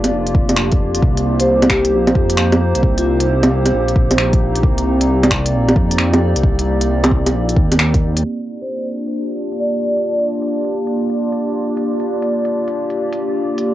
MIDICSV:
0, 0, Header, 1, 5, 480
1, 0, Start_track
1, 0, Key_signature, -2, "minor"
1, 0, Tempo, 451128
1, 1091, Time_signature, 4, 2, 24, 8
1, 14621, End_track
2, 0, Start_track
2, 0, Title_t, "Vibraphone"
2, 0, Program_c, 0, 11
2, 1487, Note_on_c, 0, 72, 84
2, 1736, Note_off_c, 0, 72, 0
2, 1802, Note_on_c, 0, 67, 89
2, 2062, Note_off_c, 0, 67, 0
2, 3171, Note_on_c, 0, 65, 83
2, 3222, Note_off_c, 0, 65, 0
2, 3250, Note_on_c, 0, 65, 74
2, 3352, Note_off_c, 0, 65, 0
2, 9167, Note_on_c, 0, 72, 78
2, 9416, Note_off_c, 0, 72, 0
2, 10212, Note_on_c, 0, 74, 78
2, 10899, Note_off_c, 0, 74, 0
2, 14621, End_track
3, 0, Start_track
3, 0, Title_t, "Ambient pad"
3, 0, Program_c, 1, 92
3, 0, Note_on_c, 1, 58, 77
3, 0, Note_on_c, 1, 62, 73
3, 0, Note_on_c, 1, 65, 71
3, 0, Note_on_c, 1, 67, 71
3, 0, Note_on_c, 1, 74, 84
3, 1048, Note_off_c, 1, 62, 0
3, 1048, Note_off_c, 1, 65, 0
3, 1048, Note_off_c, 1, 74, 0
3, 1080, Note_on_c, 1, 63, 72
3, 1081, Note_on_c, 1, 72, 87
3, 1082, Note_on_c, 1, 60, 72
3, 4887, Note_off_c, 1, 72, 0
3, 4928, Note_on_c, 1, 74, 86
3, 8723, Note_off_c, 1, 63, 0
3, 8724, Note_off_c, 1, 60, 0
3, 8726, Note_off_c, 1, 67, 0
3, 8728, Note_off_c, 1, 58, 0
3, 8731, Note_off_c, 1, 74, 0
3, 8763, Note_on_c, 1, 58, 75
3, 8765, Note_on_c, 1, 67, 67
3, 8765, Note_on_c, 1, 74, 83
3, 8766, Note_on_c, 1, 65, 69
3, 8768, Note_on_c, 1, 62, 68
3, 14621, Note_off_c, 1, 58, 0
3, 14621, Note_off_c, 1, 62, 0
3, 14621, Note_off_c, 1, 65, 0
3, 14621, Note_off_c, 1, 67, 0
3, 14621, Note_off_c, 1, 74, 0
3, 14621, End_track
4, 0, Start_track
4, 0, Title_t, "Detuned saw bass"
4, 0, Program_c, 2, 39
4, 0, Note_on_c, 2, 31, 95
4, 119, Note_off_c, 2, 31, 0
4, 130, Note_on_c, 2, 29, 94
4, 1080, Note_off_c, 2, 29, 0
4, 1087, Note_on_c, 2, 36, 98
4, 2046, Note_on_c, 2, 34, 84
4, 2062, Note_off_c, 2, 36, 0
4, 2275, Note_off_c, 2, 34, 0
4, 2289, Note_on_c, 2, 41, 83
4, 2909, Note_off_c, 2, 41, 0
4, 2935, Note_on_c, 2, 36, 78
4, 3006, Note_off_c, 2, 36, 0
4, 3011, Note_on_c, 2, 36, 98
4, 3960, Note_off_c, 2, 36, 0
4, 3973, Note_on_c, 2, 34, 98
4, 4921, Note_off_c, 2, 34, 0
4, 4928, Note_on_c, 2, 36, 96
4, 5885, Note_on_c, 2, 34, 85
4, 5901, Note_off_c, 2, 36, 0
4, 6115, Note_off_c, 2, 34, 0
4, 6126, Note_on_c, 2, 41, 83
4, 6747, Note_off_c, 2, 41, 0
4, 6766, Note_on_c, 2, 36, 80
4, 6839, Note_off_c, 2, 36, 0
4, 6846, Note_on_c, 2, 36, 95
4, 7798, Note_off_c, 2, 36, 0
4, 7803, Note_on_c, 2, 34, 97
4, 8042, Note_off_c, 2, 34, 0
4, 8049, Note_on_c, 2, 39, 79
4, 8759, Note_off_c, 2, 39, 0
4, 14621, End_track
5, 0, Start_track
5, 0, Title_t, "Drums"
5, 42, Note_on_c, 9, 42, 52
5, 42, Note_on_c, 9, 61, 33
5, 148, Note_off_c, 9, 42, 0
5, 148, Note_off_c, 9, 61, 0
5, 282, Note_on_c, 9, 42, 29
5, 369, Note_on_c, 9, 36, 104
5, 389, Note_off_c, 9, 42, 0
5, 475, Note_off_c, 9, 36, 0
5, 522, Note_on_c, 9, 42, 53
5, 522, Note_on_c, 9, 61, 33
5, 600, Note_on_c, 9, 26, 100
5, 628, Note_off_c, 9, 42, 0
5, 628, Note_off_c, 9, 61, 0
5, 706, Note_off_c, 9, 26, 0
5, 761, Note_on_c, 9, 42, 30
5, 769, Note_on_c, 9, 36, 101
5, 867, Note_off_c, 9, 42, 0
5, 875, Note_off_c, 9, 36, 0
5, 1006, Note_on_c, 9, 42, 51
5, 1089, Note_on_c, 9, 36, 109
5, 1112, Note_off_c, 9, 42, 0
5, 1196, Note_off_c, 9, 36, 0
5, 1248, Note_on_c, 9, 42, 39
5, 1354, Note_off_c, 9, 42, 0
5, 1486, Note_on_c, 9, 42, 49
5, 1592, Note_off_c, 9, 42, 0
5, 1728, Note_on_c, 9, 42, 41
5, 1728, Note_on_c, 9, 61, 60
5, 1806, Note_on_c, 9, 26, 100
5, 1809, Note_on_c, 9, 36, 57
5, 1834, Note_off_c, 9, 42, 0
5, 1834, Note_off_c, 9, 61, 0
5, 1912, Note_off_c, 9, 26, 0
5, 1916, Note_off_c, 9, 36, 0
5, 1966, Note_on_c, 9, 42, 50
5, 2073, Note_off_c, 9, 42, 0
5, 2205, Note_on_c, 9, 42, 28
5, 2205, Note_on_c, 9, 61, 50
5, 2290, Note_on_c, 9, 36, 102
5, 2311, Note_off_c, 9, 42, 0
5, 2311, Note_off_c, 9, 61, 0
5, 2397, Note_off_c, 9, 36, 0
5, 2444, Note_on_c, 9, 42, 53
5, 2525, Note_on_c, 9, 26, 101
5, 2551, Note_off_c, 9, 42, 0
5, 2631, Note_off_c, 9, 26, 0
5, 2686, Note_on_c, 9, 42, 29
5, 2686, Note_on_c, 9, 61, 56
5, 2792, Note_off_c, 9, 42, 0
5, 2792, Note_off_c, 9, 61, 0
5, 2927, Note_on_c, 9, 42, 50
5, 3012, Note_on_c, 9, 36, 107
5, 3033, Note_off_c, 9, 42, 0
5, 3118, Note_off_c, 9, 36, 0
5, 3168, Note_on_c, 9, 42, 41
5, 3274, Note_off_c, 9, 42, 0
5, 3407, Note_on_c, 9, 42, 51
5, 3513, Note_off_c, 9, 42, 0
5, 3650, Note_on_c, 9, 42, 40
5, 3650, Note_on_c, 9, 61, 62
5, 3756, Note_off_c, 9, 42, 0
5, 3756, Note_off_c, 9, 61, 0
5, 3890, Note_on_c, 9, 42, 50
5, 3890, Note_on_c, 9, 61, 35
5, 3996, Note_off_c, 9, 42, 0
5, 3996, Note_off_c, 9, 61, 0
5, 4132, Note_on_c, 9, 42, 28
5, 4211, Note_on_c, 9, 36, 96
5, 4239, Note_off_c, 9, 42, 0
5, 4317, Note_off_c, 9, 36, 0
5, 4370, Note_on_c, 9, 42, 52
5, 4370, Note_on_c, 9, 61, 36
5, 4450, Note_on_c, 9, 26, 96
5, 4477, Note_off_c, 9, 42, 0
5, 4477, Note_off_c, 9, 61, 0
5, 4556, Note_off_c, 9, 26, 0
5, 4609, Note_on_c, 9, 42, 28
5, 4610, Note_on_c, 9, 36, 99
5, 4715, Note_off_c, 9, 42, 0
5, 4716, Note_off_c, 9, 36, 0
5, 4847, Note_on_c, 9, 42, 48
5, 4930, Note_on_c, 9, 36, 106
5, 4954, Note_off_c, 9, 42, 0
5, 5037, Note_off_c, 9, 36, 0
5, 5087, Note_on_c, 9, 42, 43
5, 5193, Note_off_c, 9, 42, 0
5, 5331, Note_on_c, 9, 42, 52
5, 5437, Note_off_c, 9, 42, 0
5, 5569, Note_on_c, 9, 42, 44
5, 5569, Note_on_c, 9, 61, 65
5, 5648, Note_on_c, 9, 26, 98
5, 5650, Note_on_c, 9, 36, 54
5, 5676, Note_off_c, 9, 42, 0
5, 5676, Note_off_c, 9, 61, 0
5, 5755, Note_off_c, 9, 26, 0
5, 5756, Note_off_c, 9, 36, 0
5, 5808, Note_on_c, 9, 42, 52
5, 5914, Note_off_c, 9, 42, 0
5, 6050, Note_on_c, 9, 42, 30
5, 6050, Note_on_c, 9, 61, 51
5, 6129, Note_on_c, 9, 36, 98
5, 6156, Note_off_c, 9, 42, 0
5, 6156, Note_off_c, 9, 61, 0
5, 6235, Note_off_c, 9, 36, 0
5, 6290, Note_on_c, 9, 42, 53
5, 6367, Note_on_c, 9, 26, 93
5, 6396, Note_off_c, 9, 42, 0
5, 6473, Note_off_c, 9, 26, 0
5, 6528, Note_on_c, 9, 42, 29
5, 6528, Note_on_c, 9, 61, 60
5, 6634, Note_off_c, 9, 42, 0
5, 6634, Note_off_c, 9, 61, 0
5, 6768, Note_on_c, 9, 42, 51
5, 6847, Note_on_c, 9, 36, 110
5, 6875, Note_off_c, 9, 42, 0
5, 6954, Note_off_c, 9, 36, 0
5, 7011, Note_on_c, 9, 42, 43
5, 7118, Note_off_c, 9, 42, 0
5, 7247, Note_on_c, 9, 42, 54
5, 7354, Note_off_c, 9, 42, 0
5, 7487, Note_on_c, 9, 42, 44
5, 7487, Note_on_c, 9, 61, 69
5, 7570, Note_on_c, 9, 36, 57
5, 7594, Note_off_c, 9, 42, 0
5, 7594, Note_off_c, 9, 61, 0
5, 7676, Note_off_c, 9, 36, 0
5, 7729, Note_on_c, 9, 42, 53
5, 7729, Note_on_c, 9, 61, 37
5, 7835, Note_off_c, 9, 42, 0
5, 7835, Note_off_c, 9, 61, 0
5, 7969, Note_on_c, 9, 42, 31
5, 8050, Note_on_c, 9, 36, 98
5, 8075, Note_off_c, 9, 42, 0
5, 8156, Note_off_c, 9, 36, 0
5, 8211, Note_on_c, 9, 42, 55
5, 8211, Note_on_c, 9, 61, 37
5, 8289, Note_on_c, 9, 26, 97
5, 8317, Note_off_c, 9, 42, 0
5, 8317, Note_off_c, 9, 61, 0
5, 8396, Note_off_c, 9, 26, 0
5, 8449, Note_on_c, 9, 36, 96
5, 8450, Note_on_c, 9, 42, 30
5, 8556, Note_off_c, 9, 36, 0
5, 8556, Note_off_c, 9, 42, 0
5, 8690, Note_on_c, 9, 42, 53
5, 8796, Note_off_c, 9, 42, 0
5, 8931, Note_on_c, 9, 42, 40
5, 9038, Note_off_c, 9, 42, 0
5, 9173, Note_on_c, 9, 42, 50
5, 9279, Note_off_c, 9, 42, 0
5, 9412, Note_on_c, 9, 42, 41
5, 9518, Note_off_c, 9, 42, 0
5, 9652, Note_on_c, 9, 42, 50
5, 9758, Note_off_c, 9, 42, 0
5, 9893, Note_on_c, 9, 42, 28
5, 9999, Note_off_c, 9, 42, 0
5, 10130, Note_on_c, 9, 42, 51
5, 10237, Note_off_c, 9, 42, 0
5, 10609, Note_on_c, 9, 42, 51
5, 10715, Note_off_c, 9, 42, 0
5, 10845, Note_on_c, 9, 42, 42
5, 10952, Note_off_c, 9, 42, 0
5, 11088, Note_on_c, 9, 42, 51
5, 11195, Note_off_c, 9, 42, 0
5, 11328, Note_on_c, 9, 42, 42
5, 11434, Note_off_c, 9, 42, 0
5, 11565, Note_on_c, 9, 42, 51
5, 11672, Note_off_c, 9, 42, 0
5, 11809, Note_on_c, 9, 42, 29
5, 11915, Note_off_c, 9, 42, 0
5, 12049, Note_on_c, 9, 42, 51
5, 12155, Note_off_c, 9, 42, 0
5, 12525, Note_on_c, 9, 42, 51
5, 12631, Note_off_c, 9, 42, 0
5, 12766, Note_on_c, 9, 42, 40
5, 12873, Note_off_c, 9, 42, 0
5, 13006, Note_on_c, 9, 42, 51
5, 13112, Note_off_c, 9, 42, 0
5, 13248, Note_on_c, 9, 42, 41
5, 13354, Note_off_c, 9, 42, 0
5, 13489, Note_on_c, 9, 42, 50
5, 13596, Note_off_c, 9, 42, 0
5, 13727, Note_on_c, 9, 42, 29
5, 13833, Note_off_c, 9, 42, 0
5, 13966, Note_on_c, 9, 42, 53
5, 14072, Note_off_c, 9, 42, 0
5, 14449, Note_on_c, 9, 42, 50
5, 14556, Note_off_c, 9, 42, 0
5, 14621, End_track
0, 0, End_of_file